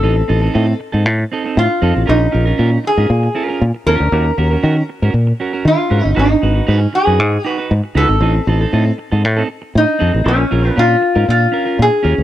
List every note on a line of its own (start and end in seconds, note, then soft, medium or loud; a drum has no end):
0.00 0.21 A1 loud
0.00 0.23 C4 medium
0.00 0.16 D#4 medium
0.00 0.77 A4 medium
0.04 0.15 A4 medium
0.16 muted clean electric guitar stroke soft
0.28 0.47 A1 medium
0.28 0.42 C4 medium
0.28 0.41 D#4 medium
0.28 0.40 A4 medium
0.42 0.52 C4 soft
0.42 0.53 D#4 medium
0.42 0.54 A4 medium
0.53 0.72 A2 loud
0.53 0.74 C4 medium
0.53 0.67 D#4 medium
0.53 0.66 A4 medium
0.67 muted clean electric guitar stroke soft
0.80 muted clean electric guitar stroke soft
0.92 1.06 G#2 medium
0.92 1.03 C4 soft
0.92 1.04 D#4 medium
0.92 1.05 A4 medium
1.04 1.23 A2 medium
1.04 muted clean electric guitar stroke soft
1.18 muted clean electric guitar stroke soft
1.32 1.45 C4 medium
1.32 1.44 D#4 medium
1.32 1.43 A4 medium
1.44 1.60 C4 medium
1.44 1.60 D#4 medium
1.44 1.59 A4 medium
1.57 1.66 A2 loud
1.57 2.09 F4 medium
1.70 muted clean electric guitar stroke soft
1.82 1.91 F2 medium
1.82 2.02 C4 medium
1.82 1.95 D#4 medium
1.82 1.94 A4 loud
1.95 2.04 A1 medium
1.95 muted clean electric guitar stroke soft
2.06 2.26 A#1 loud
2.06 2.27 C#4 medium
2.06 2.88 D#4 medium
2.06 2.19 F4 medium
2.06 2.18 A#4 medium
2.20 muted clean electric guitar stroke soft
2.31 2.52 A#1 medium
2.31 2.46 C#4 medium
2.31 2.45 F4 medium
2.31 2.44 A#4 medium
2.45 2.56 C#4 medium
2.45 2.57 F4 medium
2.45 2.58 A#4 medium
2.58 2.76 A#2 medium
2.58 2.78 C#4 medium
2.58 2.72 F4 medium
2.58 2.70 A#4 medium
2.72 muted clean electric guitar stroke soft
2.84 3.59 G#4 medium
2.84 muted clean electric guitar stroke soft
2.97 3.06 G#2 medium
2.97 3.08 C#4 medium
2.97 3.09 F4 soft
2.97 3.09 A#4 medium
3.09 3.27 A#2 medium
3.09 muted clean electric guitar stroke soft
3.23 muted clean electric guitar stroke medium
3.35 3.49 C#4 medium
3.35 3.48 F4 medium
3.35 3.47 A#4 medium
3.48 3.64 C#4 soft
3.48 3.64 F4 medium
3.48 3.63 A#4 medium
3.61 3.71 A#2 medium
3.75 muted clean electric guitar stroke medium
3.86 3.96 D#2 medium
3.86 4.07 C#4 medium
3.86 4.00 F4 medium
3.86 4.85 A#4 medium
3.86 3.99 A#4 medium
4.00 4.08 D2 medium
4.00 muted clean electric guitar stroke soft
4.12 4.30 D#2 loud
4.12 4.32 C#4 medium
4.12 4.26 F#4 medium
4.12 4.25 A#4 medium
4.26 muted clean electric guitar stroke medium
4.38 4.55 D#2 medium
4.38 4.52 C#4 medium
4.38 4.51 F#4 medium
4.38 4.50 A#4 medium
4.51 4.61 C#4 soft
4.51 4.62 F#4 soft
4.51 4.63 A#4 medium
4.63 4.81 D#3 medium
4.63 4.83 C#4 medium
4.63 4.77 F#4 medium
4.63 4.76 A#4 medium
4.77 muted clean electric guitar stroke soft
4.89 muted clean electric guitar stroke soft
5.02 5.11 G#2 medium
5.02 5.13 C#4 medium
5.02 5.14 F#4 medium
5.02 5.14 A#4 medium
5.14 5.31 A#2 medium
5.27 muted clean electric guitar stroke soft
5.40 5.53 C#4 medium
5.40 5.53 F#4 medium
5.40 5.52 A#4 medium
5.53 5.68 C#4 medium
5.53 5.68 F#4 medium
5.53 5.68 A#4 medium
5.65 5.74 D#3 medium
5.65 6.14 F4 medium
5.79 muted clean electric guitar stroke soft
5.90 6.00 G#2 medium
5.90 6.10 C#4 medium
5.90 6.03 F#4 medium
5.90 6.02 A#4 medium
6.03 6.13 G1 medium
6.03 muted clean electric guitar stroke soft
6.15 6.34 G#1 medium
6.15 6.36 D#4 medium
6.15 6.29 F#4 medium
6.15 6.28 B4 medium
6.19 6.76 D#4 medium
6.29 muted clean electric guitar stroke soft
6.42 6.60 G#1 medium
6.42 6.55 D#4 medium
6.42 6.55 F#4 medium
6.42 6.53 B4 medium
6.54 6.65 D#4 soft
6.54 6.66 F#4 medium
6.54 6.67 B4 medium
6.67 6.86 G#2 medium
6.67 6.87 D#4 medium
6.67 6.82 F#4 medium
6.67 6.80 B4 medium
6.76 6.97 C#4 medium
6.81 muted clean electric guitar stroke medium
6.93 7.48 G#4 medium
6.93 muted clean electric guitar stroke soft
7.06 7.20 F#2 medium
7.06 7.19 D#4 medium
7.06 7.19 F#4 medium
7.06 7.20 B4 medium
7.20 7.37 G#2 medium
7.33 muted clean electric guitar stroke soft
7.44 7.58 D#4 medium
7.44 7.58 F#4 medium
7.44 7.67 F#4 medium
7.44 7.57 B4 medium
7.58 7.73 D#4 medium
7.58 7.73 F#4 medium
7.58 7.73 B4 medium
7.71 7.80 G#2 medium
7.84 muted clean electric guitar stroke soft
7.95 8.04 C#2 medium
7.95 8.15 D#4 medium
7.95 8.09 F#4 medium
7.95 8.95 A4 medium
7.95 8.08 B4 loud
8.09 8.17 G#1 medium
8.09 muted clean electric guitar stroke soft
8.20 8.38 A1 loud
8.20 8.41 C4 medium
8.20 8.35 D#4 medium
8.20 8.34 A4 medium
8.36 muted clean electric guitar stroke soft
8.47 8.64 A1 medium
8.47 8.61 C4 medium
8.47 8.60 D#4 medium
8.47 8.60 A4 medium
8.61 8.71 C4 medium
8.61 8.72 D#4 soft
8.61 8.73 A4 medium
8.73 8.90 A2 loud
8.73 8.92 C4 medium
8.73 8.86 D#4 medium
8.73 8.85 A4 medium
8.86 muted clean electric guitar stroke soft
8.98 muted clean electric guitar stroke soft
9.12 9.25 G#2 medium
9.12 9.23 C4 medium
9.12 9.23 D#4 medium
9.12 9.23 A4 medium
9.24 9.41 A2 medium
9.24 muted clean electric guitar stroke soft
9.37 9.48 C4 medium
9.37 9.48 D#4 medium
9.37 9.49 A4 medium
9.49 muted clean electric guitar stroke soft
9.62 muted clean electric guitar stroke medium
9.75 9.84 A2 medium
9.75 10.28 D#4 medium
9.88 muted clean electric guitar stroke medium
9.99 10.10 F2 medium
9.99 10.19 C4 medium
9.99 10.14 D#4 medium
9.99 10.12 A4 medium
10.14 10.22 A1 medium
10.14 muted clean electric guitar stroke soft
10.24 10.43 A#1 loud
10.24 10.45 C#4 medium
10.24 10.79 C#4 medium
10.24 10.38 F4 medium
10.24 10.37 A#4 medium
10.38 muted clean electric guitar stroke soft
10.51 10.69 A#1 medium
10.51 10.65 C#4 medium
10.51 10.64 F4 medium
10.51 10.63 A#4 medium
10.64 10.75 C#4 soft
10.64 10.76 F4 medium
10.64 10.76 A#4 medium
10.76 10.95 A#2 medium
10.76 10.96 C#4 medium
10.76 10.90 F4 medium
10.76 11.29 F4 medium
10.76 10.88 A#4 medium
10.89 muted clean electric guitar stroke soft
11.01 muted clean electric guitar stroke soft
11.15 11.24 G#2 medium
11.15 11.26 C#4 soft
11.15 11.27 F4 medium
11.15 11.27 A#4 medium
11.27 11.46 A#2 medium
11.27 11.81 F4 medium
11.27 muted clean electric guitar stroke soft
11.41 muted clean electric guitar stroke medium
11.52 11.65 C#4 medium
11.52 11.65 F4 medium
11.52 11.64 A#4 medium
11.65 11.81 C#4 medium
11.65 11.81 F4 medium
11.65 11.81 A#4 medium
11.79 11.88 A#2 medium
11.79 12.23 G#4 loud
11.91 muted clean electric guitar stroke soft
12.03 12.14 D#2 medium
12.03 12.23 C#4 medium
12.03 12.15 F4 medium
12.03 12.14 A#4 medium
12.15 12.23 D2 medium
12.15 muted clean electric guitar stroke soft